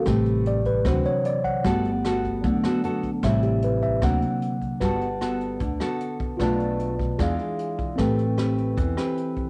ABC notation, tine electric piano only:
X:1
M:4/4
L:1/16
Q:1/4=151
K:G
V:1 name="Tine electric piano"
G4 d2 B2 c2 ^c2 d2 f2- | f8 z8 | e2 G2 B2 e2 f6- f z | [Bfa]16 |
[=FBda]8 [^Gd=f]8 | [CABg]16 |]
V:2 name="Tine electric piano" clef=bass
[C,G,]6 z2 [C,E,F,]8 | [A,B,]6 z2 [F,A,B,]2 z6 | [C,G,]8 [C,F,^A,]8 | z16 |
z16 | z16 |]